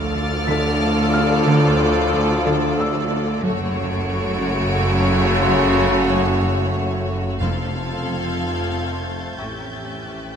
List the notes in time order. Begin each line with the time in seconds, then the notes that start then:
Already playing: D2 A2 F3 D4 F4 A4 A#4 D5 D6 F6 A6 A#6
0.17 D3
0.48 D3 B6
0.83 D3
1.13 D4 F5 F6
1.47 D3
1.81 D3
2.14 D3
2.46 D3
2.80 D3 E6
3.12 D4
3.44 F#1 F#2 C#3 A3 C#4 F#4 C#5 D7
3.78 F#2
4.11 F#2
4.44 F#2
4.77 F#2
5.10 F#3
5.42 F#2 C#5 C6
5.65 C#7
5.76 F#2
6.10 F#2
6.42 F#2
6.76 F#2
7.08 F#3
7.40 F1 F2 F3 A3 C4 F4 A4 F5 G#6 A6
7.75 F2
8.07 F2 G6
8.39 F2
8.73 F2
9.06 F3
9.38 A1 A2 E3 C#4 G4 C#5 E5 C#6
9.72 A2
10.05 A2
10.28 F#6